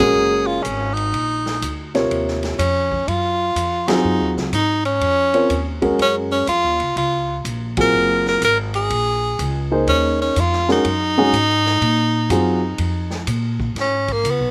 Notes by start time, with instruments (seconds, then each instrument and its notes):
Already playing: upright bass A#1
0.00 upright piano G#3 C#4 F#4 A#4, tenor saxophone G#4
0.16 upright bass F#1
0.47 tenor saxophone F4
0.63 upright bass G#1, tenor saxophone C#4, hi-hat pedal, ride
0.94 tenor saxophone D#4, ride
1.13 upright bass A#1, ride
1.46 snare
1.62 upright bass D2, hi-hat pedal, ride
1.95 upright piano C3 F4 A#4 C#5, snare, ride
2.11 upright bass D#2, ride
2.28 snare
2.43 snare, ride
2.59 upright bass F2, tenor saxophone C#4, hi-hat pedal, ride
2.92 kick
3.07 upright bass F#2, tenor saxophone F4, ride
3.55 upright bass F2, hi-hat pedal, ride
3.88 upright piano F#3 C4 F4 G#4, tenor saxophone D#4, snare, ride
4.04 upright bass F#2
4.21 upright bass D#2
4.36 upright bass C#2, snare
4.52 upright bass G#2, tenor saxophone D#4, hi-hat pedal, ride
4.85 tenor saxophone C#4, ride
5.01 upright bass F2, ride
5.34 upright piano C4 F4 A#4 C#5, ride
5.49 upright bass D#2, hi-hat pedal, ride
5.82 upright piano G#3 C#4 F#4 A#4, kick, ride
5.99 upright bass F#2, tenor saxophone C#4, ride
6.32 tenor saxophone C#4
6.47 upright bass F2, tenor saxophone F4, hi-hat pedal, ride
6.64 upright bass D#2
6.80 upright bass C#2, ride
6.96 upright bass C#2, tenor saxophone F4, ride
7.45 upright bass A#1, hi-hat pedal, ride
7.77 upright piano F#3 C4 F4 G#4, tenor saxophone A#4, kick, ride
7.93 upright bass F#1
8.26 tenor saxophone A#4, snare
8.41 upright bass G#1, tenor saxophone A#4, hi-hat pedal, ride
8.74 tenor saxophone G#4, ride
8.90 upright bass A#1, ride
9.39 upright bass C#2, hi-hat pedal, ride
9.71 upright piano A#3 D#4 G#4 C5
9.87 upright bass D#2, tenor saxophone C#4, ride
10.22 tenor saxophone C#4
10.36 upright bass F2, hi-hat pedal, ride
10.40 tenor saxophone F4
10.53 snare
10.69 upright piano G#3 C#4 F#4 A#4, tenor saxophone D#4, snare
10.84 upright bass F#2, ride
11.18 upright piano G#3 C#4 F#4 G#4
11.32 upright bass G#2, hi-hat pedal, ride
11.66 snare
11.81 upright bass A#2, ride
12.29 upright bass F#2, upright piano F#3 C4 F4 G#4, hi-hat pedal, ride
12.78 upright bass F2, ride
13.11 snare
13.27 upright bass A#2, hi-hat pedal, ride
13.60 kick
13.75 upright bass G#2, snare, ride
13.81 tenor saxophone C#4
14.08 kick, ride
14.12 tenor saxophone A#3
14.24 upright bass C#2, hi-hat pedal, ride
14.31 tenor saxophone B3
14.40 upright bass B1